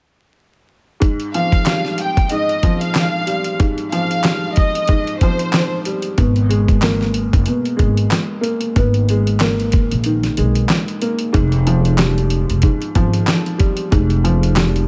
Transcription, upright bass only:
6.18 G#1
7.34 F#1
7.80 G#1
8.76 G#1
9.92 A#1
10.38 B1
11.35 F1
12.50 F1
12.96 G#1
13.93 F1

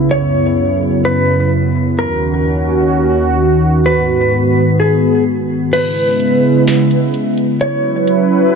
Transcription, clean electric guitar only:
0.11 C#5
1.05 B4
1.99 A#4
3.86 B4
4.80 G#4
5.73 B4
7.61 C#5

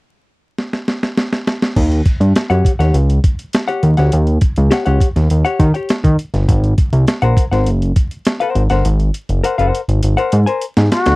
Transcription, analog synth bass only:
1.76 D#2
2.20 G2
2.50 F#2
2.79 D#2
2.94 C#2
3.83 D#2
3.98 D2
4.13 D#2
4.58 C#2
4.87 C#2
5.16 D#2
5.31 D#2
5.59 D#3
6.04 D#3
6.34 G1
6.48 G#1
6.93 C2
7.22 A#1
7.52 G#1
7.67 F#1
8.55 G#1
8.71 G1
8.85 G#1
9.29 F#1
9.59 F#1
9.88 G#1
10.04 G#1
10.33 G#2
10.77 G#2
11.07 D2

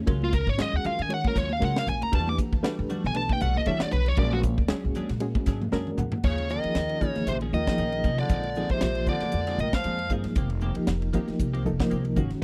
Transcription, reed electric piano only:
0.06 G#3 C#4 F#4 A#4
0.58 G#3 C#4 F#4 G#4
1.09 G#3 C#4 F#4 C#5
1.60 G#3 C#4 F#4 A#4
2.12 A3 D4 G4 B4
2.63 A3 D4 G4 B4
3.14 A3 D4 G4 B4
3.66 A3 D4 G4 C#5
4.17 G#3 C#4 F#4 A#4
4.68 G#3 C#4 F#4 G#4
5.20 G#3 C#4 F#4 G#4
5.72 G#3 C#4 F#4 A#4 D5
5.99 F#5
6.64 F3 A#3 D#4 G#4
7.01 F3 A#3 D#4 G#4
7.53 F3 A#3 D#4 F4
7.67 F3 A#3 D#4 G#4
8.56 F3 A#3 D#4 G#4
8.81 F3 A#3 F4 G4
10.10 F3 A#3 D#4 G#4
10.76 F3 A#3 D#4 G4
11.14 F3 A#3 D#4 G4
11.65 F3 A#3 D#4 A4
11.80 F3 A#3 D#4 A#4
12.16 D#3 G#3 C#4 F#4

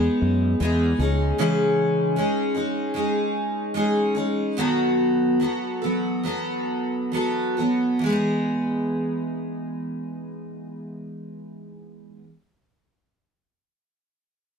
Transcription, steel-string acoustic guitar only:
Already playing: G#3 B3 D#4 G#4
0.60 G#3 B3 D#4 G#4
0.99 G#3 C#4 D#4 G#4
1.38 C#3 E3 G#3 C#4 D#4 G#4
2.16 G#3 C#4 D#4 G#4
2.54 G#3 C#4 D#4 G#4
2.94 G#3 C#4 D#4 G#4
3.74 G#3 C#4 D#4 G#4
4.15 G#3 C#4 D#4 G#4
4.57 B2 D#3 F#3 B3 F#4 A4
5.40 F#3 B3 F#4 A4
5.82 F#3 B3 F#4 A4
6.23 F#3 B3 F#4 A4
7.12 F#3 B3 F#4 A4
7.57 F#3 B3 F#4 A4
7.99 E3
8.04 G#3 B3
8.10 D#4 G#4

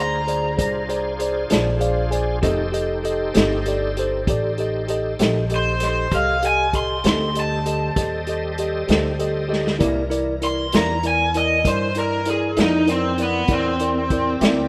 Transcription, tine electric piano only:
Already playing: G#4
0.00 C5 D5
0.27 G#4 C5 D5
0.57 G#4 C5 D5
0.89 G#4 C5 D5
1.19 G#4 C5 D5
1.50 G#4 C5 D5
1.79 G#4 C5 D5 F5
2.11 G#4 C5 D5 G#5
2.42 G4 A4 D#5
2.72 G4 A4 D#5
3.04 G4 A4 D#5
3.35 G4 A4 D#5
3.66 G4 A4 D5
3.97 G4 A4 C5
4.28 G4 A4 D5
4.58 G4 A4 D#5
4.88 G4 A4 D#5
5.21 G4 A4 D#5
5.50 G4 A4 D#5
5.81 G4 A4 D#5
6.12 G4 A4 D#5
6.43 G4 A4 D#5
6.74 G4 A4 D#5
7.04 G4 A4 D#5
7.35 G4 A4 D#5
7.66 G4 A4 D#5
7.96 G4 A4 D#5
8.27 G4 A4 D#5
8.59 G4 A4 D#5
8.88 G4 A4 D#5
9.19 G4 A4 D#5
9.49 G4 A4 D#5
9.79 E4 A#4 D5
10.10 E4 A#4 D5
10.41 E4 A#4 D5
10.73 E4 A#4 D5
11.03 E4 A#4 D5
11.35 E4 A#4 D5
11.64 E4 A#4 D5
11.96 E4 A#4 D5
12.26 E4 A#4 D5
12.57 E4 A#4 D5
12.86 E4 A#4 D5
13.18 E4 A#4 D5
13.49 E4 A#4 D5
13.80 E4 A#4 D5
14.11 E4 A#4 D5
14.42 E4 A#4 D5

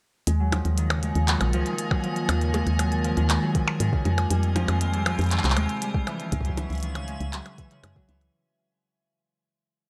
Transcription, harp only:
0.27 G#3
0.40 F#3
0.52 F3
0.78 D#3
0.90 C#3
1.03 G#3
1.28 F#3
1.53 F3
1.66 D#3
1.79 G#3
1.91 F#3
2.04 F3
2.29 D#3
2.42 C#3
2.54 G#3
2.79 F#3
3.05 F3
3.17 D#3
3.30 G#3
3.42 F#3
3.55 F3
3.80 D#3
3.93 C#3
4.05 G#3
4.31 G3
4.56 F3
4.68 D#3
4.81 G#3
4.93 G3
5.06 F3
5.31 D#3
5.44 C3
5.57 G#3
5.82 G3
6.07 E3
6.20 D#3
6.32 G#3
6.45 F#3
6.58 E3
6.83 D#3
6.95 C#3
7.08 G#3
7.33 F#3
7.58 E3
7.71 C#3
7.84 G#3
7.96 F#3
8.09 E3

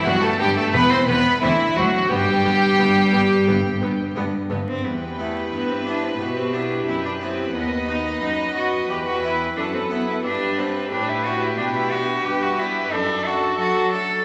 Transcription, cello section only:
0.06 G2
0.40 G2
0.74 E2
1.08 E2
1.42 D2
1.76 D2
2.10 G2
2.44 G2
2.79 G2
3.13 G2
3.48 G2
3.82 G2
4.16 G2
4.50 G2
4.84 E2
5.52 G2
6.20 B2
6.87 F#2
7.54 D#2
8.22 F#2
8.89 E2
9.57 F#2
10.25 G2
10.92 A2
11.59 B2
12.26 G2
12.93 F#2
13.60 F#3

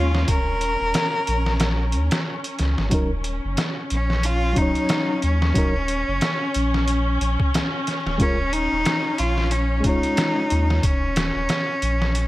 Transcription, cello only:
Already playing: F4
0.30 A#4
3.92 C#4
4.25 F4
4.58 D#4
5.23 C#4
8.20 C#4
8.52 D#4
9.19 F4
9.52 C#4
9.85 D#4
10.84 C#4

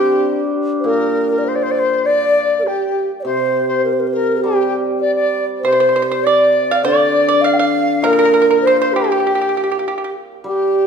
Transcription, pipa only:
Already playing: G4
5.65 C5
5.73 C5
5.80 C5
5.89 C5
5.96 C5
6.02 C5
6.12 C5
6.27 D5
6.71 F5
6.85 D5
7.29 D5
7.44 F5
7.59 F5
8.04 A#4
8.13 A#4
8.19 A#4
8.25 A#4
8.34 A#4
8.42 A#4
8.51 A#4
8.67 C5
8.82 C5
8.96 G4
9.04 G4
9.12 G4
9.20 G4
9.27 G4
9.35 G4
9.41 G4
9.49 G4
9.57 G4
9.64 G4
9.72 G4
9.79 G4
9.88 G4
9.98 G4
10.04 G4

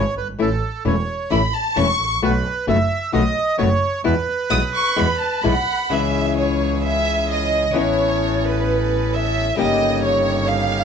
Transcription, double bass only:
Already playing: G#1
0.17 G1
0.39 A1
0.86 E1
1.31 A1
1.78 E1
2.00 A1
2.23 B1
2.68 F#1
3.14 B1
3.60 F#1
4.05 E2
4.51 B1
4.97 E2
5.44 B1
5.91 C#2
7.75 A1
9.57 G1

